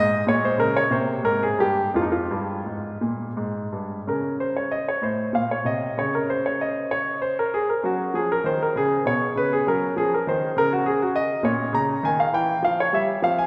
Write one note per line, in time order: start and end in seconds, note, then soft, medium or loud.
0.00 0.20 G#2 medium
0.00 0.87 G#3 soft
0.00 0.23 D#5 loud
0.27 0.52 A#2 medium
0.27 0.44 C#5 medium
0.45 0.60 C5 medium
0.58 0.84 C#3 medium
0.58 0.75 A#4 medium
0.77 0.92 C#5 medium
0.90 1.17 C3 medium
0.90 1.89 A#3 soft
0.90 1.20 C5 medium
1.23 1.51 G#2 medium
1.23 1.42 A#4 medium
1.43 1.59 G#4 medium
1.59 1.87 G2 medium
1.59 1.89 G4 medium
1.94 2.23 F2 medium
1.94 4.02 G#3 soft
1.94 2.03 F4 medium
2.02 2.10 D#4 medium
2.12 3.02 F4 medium
2.31 2.59 G2 medium
2.66 2.94 G#2 soft
3.01 3.29 A#2 medium
3.37 3.65 G#2 medium
3.73 3.99 G2 soft
4.07 4.75 C#3 soft
4.07 4.98 C#4 soft
4.07 4.35 A#4 medium
4.40 4.55 C5 medium
4.57 4.71 C#5 medium
4.72 4.86 D#5 medium
4.88 5.02 C#5 medium
5.02 5.24 A2 soft
5.02 5.34 C5 medium
5.33 5.56 A#2 soft
5.33 5.50 F5 medium
5.51 5.66 C#5 medium
5.65 5.87 C3 soft
5.65 5.97 D#5 medium
5.97 7.31 C#3 soft
5.97 7.78 C#4 soft
5.97 6.13 C#5 medium
6.15 6.29 A#4 medium
6.30 6.44 C5 medium
6.46 6.60 C#5 medium
6.61 6.91 D#5 medium
6.91 7.16 C#5 medium
7.22 7.36 C5 medium
7.39 7.52 A#4 medium
7.54 7.68 G#4 medium
7.70 7.83 A#4 medium
7.83 8.05 F#3 medium
7.83 8.71 C#4 soft
7.83 8.15 F#4 medium
8.14 8.36 F3 medium
8.14 8.29 G#4 medium
8.32 8.45 A#4 medium
8.44 8.66 D#3 medium
8.44 8.60 C5 medium
8.63 8.76 A#4 medium
8.76 8.97 C#3 medium
8.76 9.02 G#4 medium
9.05 9.27 B2 medium
9.05 9.36 C#5 medium
9.36 9.57 C#3 medium
9.36 9.51 B4 medium
9.53 9.67 G#4 medium
9.67 9.88 F#3 medium
9.67 11.39 C#4 soft
9.67 9.93 A#4 medium
9.96 10.17 F3 medium
9.96 10.12 G#4 medium
10.14 10.27 A#4 medium
10.27 10.48 D#3 medium
10.27 10.56 C5 medium
10.57 11.19 C#3 medium
10.57 10.71 A#4 medium
10.73 10.86 F#4 medium
10.86 11.00 G#4 medium
11.02 11.15 F#4 medium
11.16 11.44 D#5 medium
11.43 11.64 A#2 medium
11.43 12.29 C#4 soft
11.43 11.74 C#5 medium
11.73 11.94 C#3 medium
11.73 12.03 A#5 medium
12.03 12.25 D#3 medium
12.03 12.19 G#5 medium
12.20 12.34 F5 medium
12.33 12.54 E3 medium
12.33 12.59 G5 medium
12.63 12.84 F3 medium
12.63 12.78 F5 medium
12.80 12.94 C#5 medium
12.93 13.14 G3 medium
12.93 13.19 E5 medium
13.22 13.43 F3 medium
13.22 13.47 C4 soft
13.22 13.37 F5 medium
13.38 13.47 G#5 medium